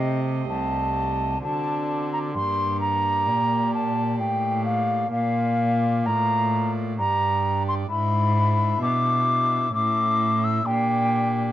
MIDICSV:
0, 0, Header, 1, 4, 480
1, 0, Start_track
1, 0, Tempo, 931677
1, 1210, Time_signature, 3, 2, 24, 8
1, 3124, Tempo, 921659
1, 5967, End_track
2, 0, Start_track
2, 0, Title_t, "Flute"
2, 0, Program_c, 0, 73
2, 0, Note_on_c, 0, 75, 79
2, 101, Note_off_c, 0, 75, 0
2, 253, Note_on_c, 0, 81, 90
2, 714, Note_off_c, 0, 81, 0
2, 739, Note_on_c, 0, 81, 96
2, 1086, Note_off_c, 0, 81, 0
2, 1096, Note_on_c, 0, 82, 82
2, 1127, Note_off_c, 0, 82, 0
2, 1211, Note_on_c, 0, 84, 92
2, 1444, Note_off_c, 0, 84, 0
2, 1446, Note_on_c, 0, 82, 101
2, 1913, Note_off_c, 0, 82, 0
2, 1929, Note_on_c, 0, 81, 95
2, 2157, Note_off_c, 0, 81, 0
2, 2159, Note_on_c, 0, 79, 85
2, 2390, Note_off_c, 0, 79, 0
2, 2397, Note_on_c, 0, 77, 88
2, 2629, Note_off_c, 0, 77, 0
2, 2636, Note_on_c, 0, 77, 99
2, 3121, Note_on_c, 0, 82, 102
2, 3129, Note_off_c, 0, 77, 0
2, 3460, Note_off_c, 0, 82, 0
2, 3605, Note_on_c, 0, 82, 100
2, 3940, Note_off_c, 0, 82, 0
2, 3967, Note_on_c, 0, 84, 101
2, 3998, Note_off_c, 0, 84, 0
2, 4078, Note_on_c, 0, 83, 110
2, 4546, Note_off_c, 0, 83, 0
2, 4561, Note_on_c, 0, 86, 114
2, 5028, Note_off_c, 0, 86, 0
2, 5041, Note_on_c, 0, 86, 109
2, 5403, Note_on_c, 0, 88, 91
2, 5411, Note_off_c, 0, 86, 0
2, 5518, Note_on_c, 0, 79, 111
2, 5526, Note_off_c, 0, 88, 0
2, 5967, Note_off_c, 0, 79, 0
2, 5967, End_track
3, 0, Start_track
3, 0, Title_t, "Pipe organ"
3, 0, Program_c, 1, 19
3, 0, Note_on_c, 1, 48, 52
3, 0, Note_on_c, 1, 57, 43
3, 0, Note_on_c, 1, 67, 49
3, 0, Note_on_c, 1, 75, 46
3, 231, Note_off_c, 1, 48, 0
3, 255, Note_on_c, 1, 36, 55
3, 702, Note_off_c, 1, 57, 0
3, 706, Note_off_c, 1, 67, 0
3, 710, Note_off_c, 1, 75, 0
3, 713, Note_on_c, 1, 60, 48
3, 714, Note_off_c, 1, 36, 0
3, 718, Note_on_c, 1, 66, 42
3, 728, Note_on_c, 1, 74, 45
3, 735, Note_on_c, 1, 50, 52
3, 1185, Note_off_c, 1, 60, 0
3, 1186, Note_on_c, 1, 58, 49
3, 1188, Note_off_c, 1, 66, 0
3, 1190, Note_off_c, 1, 50, 0
3, 1192, Note_off_c, 1, 74, 0
3, 1193, Note_on_c, 1, 67, 44
3, 1203, Note_on_c, 1, 74, 51
3, 1209, Note_on_c, 1, 43, 57
3, 1665, Note_off_c, 1, 43, 0
3, 1684, Note_on_c, 1, 46, 56
3, 2137, Note_off_c, 1, 46, 0
3, 2159, Note_on_c, 1, 45, 54
3, 2597, Note_off_c, 1, 58, 0
3, 2603, Note_off_c, 1, 67, 0
3, 2607, Note_on_c, 1, 58, 51
3, 2608, Note_off_c, 1, 74, 0
3, 2612, Note_off_c, 1, 45, 0
3, 2616, Note_on_c, 1, 65, 49
3, 2624, Note_on_c, 1, 74, 52
3, 2631, Note_on_c, 1, 46, 56
3, 3101, Note_off_c, 1, 46, 0
3, 3120, Note_on_c, 1, 45, 61
3, 3570, Note_off_c, 1, 58, 0
3, 3574, Note_off_c, 1, 65, 0
3, 3578, Note_off_c, 1, 74, 0
3, 3581, Note_off_c, 1, 45, 0
3, 3583, Note_on_c, 1, 62, 55
3, 3590, Note_on_c, 1, 67, 52
3, 3597, Note_on_c, 1, 74, 52
3, 3604, Note_on_c, 1, 43, 58
3, 4044, Note_off_c, 1, 62, 0
3, 4054, Note_on_c, 1, 62, 54
3, 4058, Note_off_c, 1, 43, 0
3, 4058, Note_off_c, 1, 67, 0
3, 4062, Note_off_c, 1, 74, 0
3, 4065, Note_on_c, 1, 64, 58
3, 4072, Note_on_c, 1, 76, 54
3, 4078, Note_on_c, 1, 44, 62
3, 4535, Note_off_c, 1, 44, 0
3, 4557, Note_on_c, 1, 47, 65
3, 5002, Note_off_c, 1, 62, 0
3, 5007, Note_off_c, 1, 64, 0
3, 5011, Note_off_c, 1, 76, 0
3, 5011, Note_on_c, 1, 61, 54
3, 5014, Note_off_c, 1, 47, 0
3, 5020, Note_on_c, 1, 64, 49
3, 5025, Note_on_c, 1, 76, 54
3, 5034, Note_on_c, 1, 45, 60
3, 5489, Note_on_c, 1, 62, 55
3, 5491, Note_off_c, 1, 61, 0
3, 5496, Note_off_c, 1, 64, 0
3, 5497, Note_off_c, 1, 45, 0
3, 5498, Note_off_c, 1, 76, 0
3, 5500, Note_on_c, 1, 67, 53
3, 5505, Note_on_c, 1, 74, 52
3, 5515, Note_on_c, 1, 46, 56
3, 5967, Note_off_c, 1, 46, 0
3, 5967, Note_off_c, 1, 62, 0
3, 5967, Note_off_c, 1, 67, 0
3, 5967, Note_off_c, 1, 74, 0
3, 5967, End_track
4, 0, Start_track
4, 0, Title_t, "Cello"
4, 0, Program_c, 2, 42
4, 0, Note_on_c, 2, 48, 76
4, 241, Note_off_c, 2, 48, 0
4, 254, Note_on_c, 2, 36, 70
4, 725, Note_off_c, 2, 36, 0
4, 732, Note_on_c, 2, 50, 70
4, 1208, Note_on_c, 2, 43, 81
4, 1216, Note_off_c, 2, 50, 0
4, 1686, Note_on_c, 2, 46, 71
4, 1694, Note_off_c, 2, 43, 0
4, 2159, Note_on_c, 2, 45, 72
4, 2167, Note_off_c, 2, 46, 0
4, 2633, Note_off_c, 2, 45, 0
4, 2635, Note_on_c, 2, 46, 83
4, 3125, Note_on_c, 2, 45, 79
4, 3132, Note_off_c, 2, 46, 0
4, 3606, Note_on_c, 2, 43, 76
4, 3614, Note_off_c, 2, 45, 0
4, 4075, Note_off_c, 2, 43, 0
4, 4078, Note_on_c, 2, 44, 96
4, 4546, Note_off_c, 2, 44, 0
4, 4554, Note_on_c, 2, 47, 73
4, 5024, Note_off_c, 2, 47, 0
4, 5035, Note_on_c, 2, 45, 79
4, 5508, Note_off_c, 2, 45, 0
4, 5515, Note_on_c, 2, 46, 90
4, 5967, Note_off_c, 2, 46, 0
4, 5967, End_track
0, 0, End_of_file